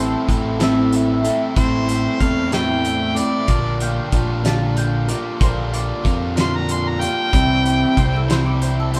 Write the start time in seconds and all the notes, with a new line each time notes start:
Already playing: A1 A2 E3 A3 C4 E4 A4 C5
0.27 A1 E3 A3 C4 E4 A4, kick, closed hi-hat
0.60 A2 E3 A3 C4 E4 A4 E5, snare, closed hi-hat
0.93 E5, closed hi-hat
1.24 A3 C4 E4 A4, closed hi-hat
1.55 A1 A2 E3 A3 C4 E4 A4 C5, kick, closed hi-hat
1.87 A3 C4 E4, closed hi-hat
2.19 E2 E3 A3 C4 E4 A4 F5, kick, closed hi-hat
2.50 A2 E3 A3 C4 E4 A4 G5, snare, closed hi-hat
2.85 closed hi-hat
3.15 A3 C4 E4 A4 D5, closed hi-hat
3.47 A#1 A#2 D3 G3 A#3 D4 F4 A#4, kick, closed hi-hat
3.80 A#3 D4 F4 G5, closed hi-hat
4.11 A#1 D3 G3 A#3 D4 F4 A#4, kick, closed hi-hat
4.44 A#2 D3 G3 A#3 D4 F4 A#4 A5, snare, closed hi-hat
4.77 G5, closed hi-hat
5.08 G3 A#3 D4 F4 A#4 D5, closed hi-hat
5.39 A#1 A#2 D3 G3 A#3 D4 F4 A#4 C5, kick, closed hi-hat
5.72 A#3 D4 F4 D5, closed hi-hat
6.03 F2 D3 G3 A#3 D4 F4 A#4, kick, closed hi-hat
6.36 A#2 D3 G3 A#3 D4 F4 A#4 C6, snare, closed hi-hat
6.56 A#5
6.69 C6, closed hi-hat
6.88 A#5
7.00 G3 A#3 D4 F4 A#4 G5, closed hi-hat
7.32 C2 C3 E3 G3 C4 E4 C5, kick, closed hi-hat
7.63 G3 C4 E4, closed hi-hat
7.95 C2 E3 G3 C4 E4 C5, kick, closed hi-hat
8.00 C5
8.16 A4
8.29 C3 E3 G3 C4 E4 C5, snare, closed hi-hat
8.46 D5
8.62 C5, closed hi-hat
8.80 A4
8.94 G3 C4 E4 C5, closed hi-hat